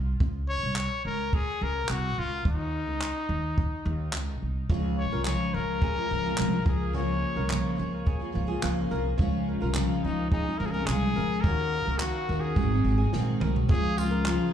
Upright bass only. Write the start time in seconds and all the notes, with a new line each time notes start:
Already playing: C2
0.21 C#2
0.63 C2
1.05 C#2
1.61 C#2
1.89 C2
2.18 C#2
2.45 D#2
2.88 C#2
3.29 D#2
3.85 D#2
4.14 C#2
4.42 C2
4.70 C#2
5.12 C2
5.54 C#2
6.11 C#2
6.38 C2
6.66 C#2
7.36 C2
7.79 C#2
8.35 C#2
8.63 C#2
8.91 C2
9.19 C#2
9.62 C2
10.04 C#2
10.60 C#2
10.88 C2
11.17 C#2
11.44 D#2
11.87 C#2
12.29 D#2
12.57 G#1
12.84 G#1
13.13 A#1
13.41 C2
13.70 C#2